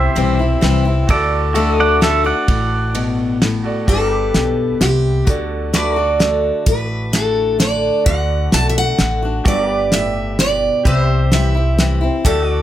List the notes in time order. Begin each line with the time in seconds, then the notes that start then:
Already playing: C2 C3 E4 G4 C5 E5
0.16 B1 E3 G3 C4 E4, ride
0.39 C4 E4
0.61 C2 E3 G3 C4 E4, snare, ride
0.85 C4 E4
1.07 D2 D3 F#4 A4 D5, kick, ride
1.54 D3 A3 D4 F#4 A4 E5, ride
1.80 D5 F#5
2.01 D3 A3 D4 F#4 A4 E5, snare, ride
2.24 D4 F#4 D5 F#5
2.48 A1 A2, kick, ride
2.95 B2, ride
3.42 A2, snare, ride
3.63 F#4 A4 D5
3.86 G1 G2 F#4 G4 A4 B4 D5, kick, closed hi-hat
3.90 D5
4.08 G4
4.15 B4
4.34 B1 B2, snare, closed hi-hat
4.81 C2 C3 G4, snare, closed hi-hat
5.25 D2 D3 F#4 A4 D5, kick, closed hi-hat
5.73 D3 A3 D4 F#4 B4 D5, snare, closed hi-hat
5.96 D4 F#4
6.01 A4
6.19 D3 A3 D4 F#4, snare, closed hi-hat
6.66 A1 A2 B4, kick, closed hi-hat
7.13 D3 A3 D4 F#4 A4, snare, closed hi-hat
7.59 D3 A3 D4 F#4 D5, snare, closed hi-hat
8.04 D2 D3 F#4 A4 D5 F#5, kick, closed hi-hat
8.52 B1 D3 A3 D4 F#4 A5, snare, closed hi-hat
8.69 E5
8.78 F#5
8.99 A1 D3 A3 D4 F#4, snare, closed hi-hat
9.22 D4 F#4
9.44 G1 G2 F#4 G4 A4 B4 D5, kick, closed hi-hat
9.48 D5
9.65 G4
9.71 B4
9.92 A2 E5, snare, closed hi-hat
10.39 B2 D5, snare, closed hi-hat
10.84 C2 C3 G4 B4 C5 E5, kick, closed hi-hat
11.06 C5
11.31 E3 G3 C4 E4 E5, snare, closed hi-hat
11.55 C4 E4
11.78 E3 G3 C4 E4, snare, closed hi-hat
12.01 C4 E4
12.25 D2 D3 F#4 G4 A4 D5 E5, kick, closed hi-hat
12.45 F#4
12.52 D5